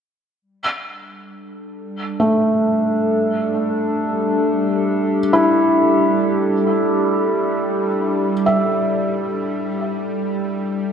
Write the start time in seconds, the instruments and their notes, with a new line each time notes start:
0.42 ambient pad G3, synth drone G3
0.65 ambient pad D4 A4
2.20 felt piano A3
3.11 ambient pad G4
5.33 felt piano E4
8.46 felt piano E5